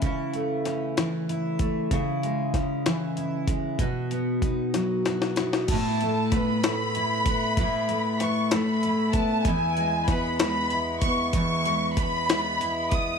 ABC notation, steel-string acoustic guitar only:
X:1
M:6/8
L:1/8
Q:3/8=64
K:Alyd
V:1 name="Steel-string acoustic guitar"
[C,E] A, C E, E A, | [C,E] G, C E, E G, | [B,,F] B, D F, F B, | [A,,E] A, B, A, E B, |
[A,,E] A, B, A, E B, | [E,,E] G, B, G, E B, | [E,,E] G, B, G, E B, |]